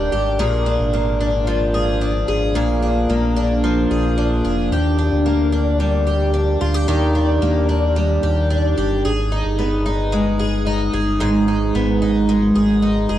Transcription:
Already playing: twelve-string acoustic guitar D#3 G3 A#3 D4 G4
0.12 sub bass G#1, twelve-string acoustic guitar G4
0.39 sub bass A#1, twelve-string acoustic guitar A#2 G#4
0.66 twelve-string acoustic guitar D4
0.80 sub bass G#1
0.93 twelve-string acoustic guitar A#3
1.20 twelve-string acoustic guitar D4
1.47 twelve-string acoustic guitar F3
1.74 twelve-string acoustic guitar G#4
2.01 twelve-string acoustic guitar D4
2.28 sub bass G#1, twelve-string acoustic guitar G#4
2.55 sub bass A#1, twelve-string acoustic guitar A#2 G#4
2.82 twelve-string acoustic guitar D4
3.09 sub bass A#1, twelve-string acoustic guitar A#3
3.36 twelve-string acoustic guitar D4
3.64 twelve-string acoustic guitar F3
3.91 sub bass A#1, twelve-string acoustic guitar G#4
4.18 twelve-string acoustic guitar D4
4.45 sub bass F1, twelve-string acoustic guitar G#4
4.72 sub bass D#2, twelve-string acoustic guitar G4
4.99 twelve-string acoustic guitar D4
5.12 sub bass D2
5.26 twelve-string acoustic guitar A#3
5.52 twelve-string acoustic guitar D4
5.80 twelve-string acoustic guitar G3
6.07 twelve-string acoustic guitar G4
6.34 twelve-string acoustic guitar D4
6.61 sub bass D2, twelve-string acoustic guitar F4
6.74 twelve-string acoustic guitar G4
6.88 sub bass D#2, twelve-string acoustic guitar D#3 G4
7.15 twelve-string acoustic guitar D4
7.42 sub bass D#2, twelve-string acoustic guitar A#3
7.69 twelve-string acoustic guitar D4
7.96 twelve-string acoustic guitar G3
8.23 sub bass D#2, twelve-string acoustic guitar G4
8.50 twelve-string acoustic guitar D4
8.77 sub bass G1, twelve-string acoustic guitar G4
9.05 sub bass G#1, twelve-string acoustic guitar G#4
9.32 twelve-string acoustic guitar D#4
9.45 sub bass G1
9.59 twelve-string acoustic guitar B3
9.86 twelve-string acoustic guitar D#4
10.12 twelve-string acoustic guitar G#3
10.39 twelve-string acoustic guitar G#4
10.67 twelve-string acoustic guitar D#4
10.93 sub bass G1, twelve-string acoustic guitar G#4
11.20 sub bass G#1, twelve-string acoustic guitar G#2 G#4
11.48 twelve-string acoustic guitar D#4
11.75 sub bass G#1, twelve-string acoustic guitar B3
12.02 twelve-string acoustic guitar D#4
12.29 twelve-string acoustic guitar G#3
12.56 sub bass G#1, twelve-string acoustic guitar G#4
12.82 twelve-string acoustic guitar D#4
13.09 sub bass F1, twelve-string acoustic guitar G#4

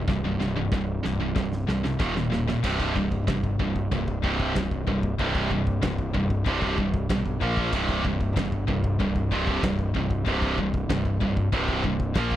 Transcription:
0.08 fingered electric bass C1, distorted electric guitar C2 G2, kick, snare
0.24 distorted electric guitar C2 G2
0.40 fingered electric bass C1, distorted electric guitar C2 G2, snare
0.56 distorted electric guitar C2 G2
0.72 fingered electric bass C1, distorted electric guitar C2 G2, kick, snare
1.04 fingered electric bass C1, distorted electric guitar C2 G2, snare
1.20 distorted electric guitar C2 G2
1.35 fingered electric bass C1, distorted electric guitar C2 G2, kick, snare
1.52 snare
1.67 distorted electric guitar C2 G2, fingered electric bass C2, snare
1.84 distorted electric guitar C2 G2, snare
1.99 fingered electric bass D#1, distorted electric guitar D#2 A#2 D#3, kick, snare
2.15 distorted electric guitar D#2 A#2, snare
2.30 distorted electric guitar D#2 A#2, snare
2.47 distorted electric guitar D#2 A#2, snare
2.63 fingered electric bass C1, distorted electric guitar C2 G2 C3, kick, crash, china
2.80 kick
2.95 distorted electric guitar C2 G2, kick
3.12 kick
3.27 fingered electric bass G1, distorted electric guitar C2 G2, kick, snare, china
3.44 kick
3.59 fingered electric bass C1, distorted electric guitar C2 G2, kick
3.76 kick
3.91 fingered electric bass C1, distorted electric guitar C2 G2, kick, china
4.08 kick
4.22 distorted electric guitar C2 G2 C3, kick
4.40 kick
4.55 fingered electric bass C1, distorted electric guitar C2 G2, kick, snare, china
4.71 kick
4.87 fingered electric bass C1, distorted electric guitar C2 G2, kick
5.03 kick
5.18 fingered electric bass C1, distorted electric guitar C2 G2 C3, kick, china
5.35 kick
5.50 distorted electric guitar C2 G2, kick
5.67 kick
5.82 fingered electric bass C1, distorted electric guitar C2 G2, kick, snare, china
5.98 kick
6.13 fingered electric bass C1, distorted electric guitar C2 G2, kick
6.30 kick
6.45 fingered electric bass C1, distorted electric guitar C2 G2 C3, kick, china
6.62 kick
6.77 distorted electric guitar C2 G2, kick
6.94 kick
7.09 fingered electric bass B1, distorted electric guitar C2 G2, kick, snare, china
7.26 kick
7.41 fingered electric bass A#1, distorted electric guitar A#2 F3 A#3, kick
7.57 kick
7.72 fingered electric bass C1, distorted electric guitar C2 G2 C3, kick, crash, china
7.89 kick
8.04 distorted electric guitar C2 G2, kick
8.21 kick
8.36 fingered electric bass G1, distorted electric guitar C2 G2, kick, snare, china
8.52 kick
8.67 fingered electric bass C1, distorted electric guitar C2 G2, kick
8.84 kick
8.99 fingered electric bass C1, distorted electric guitar C2 G2, kick, china
9.16 kick
9.31 distorted electric guitar C2 G2 C3, kick
9.47 kick
9.63 fingered electric bass C1, distorted electric guitar C2 G2, kick, snare, china
9.79 kick
9.94 fingered electric bass C1, distorted electric guitar C2 G2, kick
10.10 kick
10.25 fingered electric bass C1, distorted electric guitar C2 G2 C3, kick, china
10.42 kick
10.57 distorted electric guitar C2 G2, kick
10.74 kick
10.89 fingered electric bass C1, distorted electric guitar C2 G2, kick, snare, china
11.05 kick
11.20 fingered electric bass C1, distorted electric guitar C2 G2, kick
11.37 kick
11.52 fingered electric bass C1, distorted electric guitar C2 G2 C3, kick, china
11.68 kick
11.84 distorted electric guitar C2 G2, kick
12.00 kick
12.14 fingered electric bass A#1, distorted electric guitar A#2 F3 A#3, kick, snare, china
12.31 kick

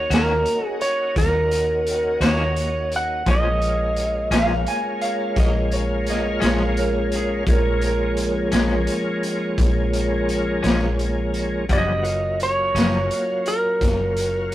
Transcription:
Already playing: tonewheel organ A#3 C#4 D#4 F#4, lead electric guitar C#5
0.10 fingered electric bass D#2, clean electric guitar D#3 A#3 C#4 F#4, lead electric guitar A#4, snare, closed hi-hat
0.46 closed hi-hat
0.66 lead electric guitar G#4
0.81 lead electric guitar C#5, closed hi-hat
1.16 fingered electric bass D#2, lead electric guitar A#4, kick, snare, closed hi-hat
1.51 closed hi-hat
1.87 closed hi-hat
2.20 fingered electric bass D#2, clean electric guitar D#3 A#3 C#4 F#4, lead electric guitar C#5, snare, closed hi-hat
2.56 closed hi-hat
2.92 closed hi-hat
2.96 lead electric guitar F#5
3.26 fingered electric bass A#1, clean electric guitar A#2 F3 G#3 C#4, tonewheel organ G#3 A#3 C#4 F4, kick, closed hi-hat
3.31 lead electric guitar D#5
3.62 closed hi-hat
3.96 closed hi-hat
4.31 fingered electric bass A#1, clean electric guitar A#2 F3 G#3 C#4, electric slide guitar F5, snare, closed hi-hat
4.67 electric slide guitar G#5, closed hi-hat
5.02 electric slide guitar F5, closed hi-hat
5.36 fingered electric bass A#1, electric slide guitar D#5, kick, snare, closed hi-hat
5.71 electric slide guitar C#5, closed hi-hat
6.06 electric slide guitar D#5, snare, closed hi-hat
6.40 fingered electric bass A#1, clean electric guitar A#2 F3 G#3 C#4, closed hi-hat
6.44 electric slide guitar C#5, snare
6.77 electric slide guitar A#4, closed hi-hat
7.12 closed hi-hat
7.16 electric slide guitar G#4
7.47 fingered electric bass A#1, tonewheel organ F3 G#3 A#3 C#4, kick, closed hi-hat
7.51 electric slide guitar A#4
7.82 electric slide guitar A#4, closed hi-hat
8.17 closed hi-hat
8.52 fingered electric bass A#1, clean electric guitar A#2 F3 G#3 C#4, snare, closed hi-hat
8.87 closed hi-hat
9.23 closed hi-hat
9.58 fingered electric bass A#1, kick, closed hi-hat
9.93 closed hi-hat
10.29 closed hi-hat
10.63 fingered electric bass A#1, clean electric guitar A#2 F3 G#3 C#4, snare, closed hi-hat
10.99 closed hi-hat
11.34 closed hi-hat
11.69 fingered electric bass F#1, clean electric guitar F#2 F3 A#3 C#4, tonewheel organ D3 G3 B3 F#4, kick, closed hi-hat
11.73 lead electric guitar D#5
12.03 tonewheel organ F#3 A#3 C#4 F4, closed hi-hat
12.40 lead electric guitar C#5, closed hi-hat
12.74 fingered electric bass F#1, clean electric guitar F#2 F3 A#3 C#4, closed hi-hat
12.79 snare
13.11 closed hi-hat
13.46 lead electric guitar A#4, closed hi-hat
13.81 fingered electric bass F#1, kick, snare, closed hi-hat
14.17 closed hi-hat

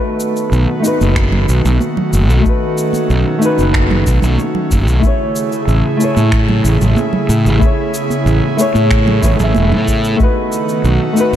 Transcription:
Already playing: analog synth pad D#3 A3 B3 F#4, nylon-string guitar A3 D#4 F#4 B4
0.20 cabasa
0.36 cabasa
0.52 fingered electric bass B1, cabasa
0.80 nylon-string guitar A3 D#4
0.84 nylon-string guitar F#4 B4, cabasa
1.01 fingered electric bass F#1, high conga, cabasa
1.16 finger snap, kick, cabasa
1.32 high conga, low conga
1.49 fingered electric bass B1, cabasa
1.65 fingered electric bass B1, low conga, cabasa
1.80 high conga, cabasa
1.97 low conga
2.13 fingered electric bass F#1, cabasa
2.30 fingered electric bass B1, cabasa
2.41 nylon-string guitar A3 D#4, analog synth pad C#4
2.45 nylon-string guitar F#4 B4, kick, cabasa
2.78 cabasa
2.93 high conga, cabasa
3.10 fingered electric bass B1, cabasa
3.38 nylon-string guitar A3 D#4, cabasa
3.43 nylon-string guitar F#4 B4
3.58 fingered electric bass F#1, high conga, cabasa
3.74 finger snap, kick, cabasa
3.90 high conga, low conga
4.07 fingered electric bass B1, kick, cabasa
4.22 fingered electric bass B1, low conga, cabasa
4.39 high conga, cabasa
4.55 low conga
4.71 fingered electric bass F#1, kick, cabasa
4.88 fingered electric bass B1, cabasa
5.00 analog synth pad C#3 E4 G#4, nylon-string guitar A3 E4, kick, cabasa
5.04 nylon-string guitar G#4 C#5
5.36 cabasa
5.52 cabasa
5.68 fingered electric bass A1, cabasa
5.97 nylon-string guitar A3 E4, cabasa
6.02 nylon-string guitar G#4 C#5
6.17 fingered electric bass A2, high conga, cabasa
6.32 finger snap, kick, cabasa
6.48 high conga, low conga
6.64 fingered electric bass A1, cabasa
6.81 fingered electric bass A1, low conga, cabasa
6.96 high conga, cabasa
7.13 low conga
7.29 fingered electric bass A2, cabasa
7.45 fingered electric bass A1, cabasa
7.58 nylon-string guitar A3 E4, analog synth pad B3, kick
7.62 nylon-string guitar G#4 C#5, cabasa
7.94 cabasa
8.10 high conga, cabasa
8.26 fingered electric bass A1, cabasa
8.57 nylon-string guitar A3 E4 G#4 C#5, cabasa
8.74 fingered electric bass A2, high conga, cabasa
8.91 finger snap, kick, cabasa
9.06 high conga, low conga
9.22 fingered electric bass A1, nylon-string guitar A3 E4 G#4 C#5, kick, cabasa
9.36 fingered electric bass A1, nylon-string guitar A3 E4, low conga, cabasa
9.40 nylon-string guitar G#4 E5
9.54 fingered electric bass E1, high conga, cabasa
9.72 fingered electric bass A2, low conga
9.88 kick, cabasa
10.04 cabasa
10.16 analog synth pad D#3 A3 F#4, nylon-string guitar A3 D#4, kick, cabasa
10.21 nylon-string guitar F#4 B4
10.52 cabasa
10.69 cabasa
10.84 fingered electric bass B1, cabasa
11.13 nylon-string guitar A3 D#4, cabasa
11.18 nylon-string guitar F#4 B4

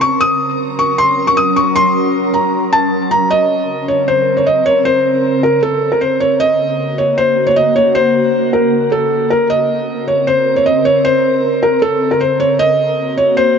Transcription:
Already playing: ambient pad C#3 C4 A#4
0.01 felt piano C#6
0.21 ambient pad F#3 C#4 A#4, felt piano D#6
0.79 felt piano C#6
0.98 felt piano C6
1.27 felt piano C#6
1.37 felt piano D#6
1.56 felt piano C#6
1.76 felt piano C6
2.34 felt piano A#5
2.73 felt piano A5
3.11 felt piano A#5
3.30 ambient pad C#3 C4 A#4, felt piano D#5
3.88 felt piano C#5
4.08 felt piano C5
4.37 felt piano C#5
4.46 felt piano D#5
4.66 felt piano C#5
4.85 felt piano C5
5.43 felt piano A#4
5.63 felt piano A4
5.92 felt piano A#4
6.01 felt piano C5
6.20 felt piano C#5
6.40 ambient pad A#3 F#4, felt piano D#5
6.98 felt piano C#5
7.18 felt piano C5
7.47 felt piano C#5
7.56 felt piano D#5
7.76 felt piano C#5
7.95 felt piano C5
8.53 felt piano A#4
8.92 felt piano A4
9.30 felt piano A#4
9.50 ambient pad C4 A#4, felt piano D#5
10.08 felt piano C#5
10.27 felt piano C5
10.56 felt piano C#5
10.66 felt piano D#5
10.85 felt piano C#5
11.05 felt piano C5
11.63 felt piano A#4
11.82 felt piano A4
12.11 felt piano A#4
12.21 felt piano C5
12.40 felt piano C#5
12.59 ambient pad C#3 A#3 F#4, felt piano D#5
13.17 felt piano C#5
13.37 felt piano C5

